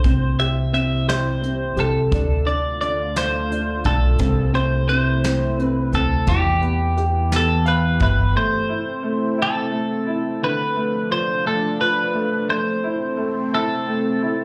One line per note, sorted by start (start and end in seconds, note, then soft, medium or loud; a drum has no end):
0.00 0.39 C5 medium
0.04 1.74 C2 medium
0.04 2.11 C3 medium
0.04 2.11 G3 medium
0.04 0.71 C4 medium
0.04 2.11 E4 medium
0.04 kick medium
0.04 closed hi-hat medium
0.39 1.06 G4 soft
0.39 0.72 E5 medium
0.39 closed hi-hat soft
0.73 1.41 C4 soft
0.73 1.09 E5 medium
0.73 closed hi-hat soft
1.08 1.75 G4 soft
1.08 1.80 C5 medium
1.08 snare medium
1.08 closed hi-hat medium
1.42 2.10 C4 soft
1.42 closed hi-hat medium
1.76 2.10 C2 medium
1.76 2.11 G4 medium
1.76 2.50 A4 medium
1.76 closed hi-hat soft
2.12 3.81 D2 loud
2.12 4.18 D3 medium
2.12 6.24 A3 medium
2.12 2.44 D4 medium
2.12 4.19 F4 medium
2.12 kick medium
2.12 closed hi-hat medium
2.46 2.81 D4 medium
2.46 2.80 D5 medium
2.46 closed hi-hat soft
2.81 3.15 D4 soft
2.81 3.17 D5 medium
2.81 closed hi-hat soft
3.16 3.49 D4 medium
3.16 3.86 C5 medium
3.16 snare medium
3.16 closed hi-hat medium
3.51 3.84 D4 medium
3.51 closed hi-hat soft
3.84 4.18 B1 medium
3.84 4.19 D4 medium
3.84 4.55 A4 medium
3.84 kick medium
3.84 closed hi-hat soft
4.19 5.89 C2 loud
4.19 6.26 C3 medium
4.19 4.51 C4 medium
4.19 6.26 E4 medium
4.19 kick loud
4.19 closed hi-hat medium
4.53 4.88 C4 medium
4.53 4.88 C5 medium
4.53 closed hi-hat soft
4.89 5.22 C4 medium
4.89 5.61 C5 medium
4.89 closed hi-hat soft
5.24 5.57 C4 medium
5.24 snare medium
5.24 closed hi-hat medium
5.59 5.92 C4 soft
5.59 5.95 B4 medium
5.59 closed hi-hat soft
5.92 6.25 D2 medium
5.92 6.27 C4 medium
5.92 6.30 A4 medium
5.92 closed hi-hat medium
6.27 7.97 E2 loud
6.27 8.31 E3 medium
6.27 8.34 E3 medium
6.27 8.34 B3 medium
6.27 7.63 G4 medium
6.27 8.34 G4 medium
6.27 kick loud
6.27 closed hi-hat medium
6.62 7.30 B3 medium
6.62 closed hi-hat soft
6.97 8.32 G4 medium
6.97 closed hi-hat soft
7.31 7.99 B3 medium
7.31 snare medium
7.31 closed hi-hat medium
7.36 7.68 A4 medium
7.65 8.02 B4 medium
7.65 7.98 F5 medium
7.65 closed hi-hat medium
8.00 8.33 G1 medium
8.00 8.35 B3 medium
8.00 8.36 B4 medium
8.00 8.33 E5 medium
8.00 kick medium
8.00 closed hi-hat soft
8.35 9.01 A3 medium
8.35 10.41 A3 medium
8.35 10.41 C4 medium
8.35 10.41 E4 medium
8.35 9.42 C5 loud
8.69 9.37 E4 medium
9.03 9.70 A3 medium
9.38 10.05 E4 medium
9.42 10.44 A4 medium
9.71 10.40 A3 medium
10.07 10.41 E4 medium
10.43 12.46 D3 medium
10.43 12.49 F3 medium
10.43 12.49 D4 medium
10.43 11.09 B4 medium
10.76 11.44 A3 medium
11.10 11.79 F4 medium
11.10 11.47 C5 loud
11.45 12.12 A3 medium
11.45 11.81 A4 loud
11.81 12.48 F4 medium
11.81 12.50 B4 loud
12.14 12.47 A3 medium
12.48 13.16 A3 medium
12.48 14.44 A3 medium
12.48 14.44 C4 medium
12.48 13.54 C5 loud
12.84 13.52 E4 medium
13.17 13.86 A3 medium
13.54 14.21 E4 medium
13.54 14.44 A4 loud
13.88 14.44 A3 medium
14.22 14.44 E4 medium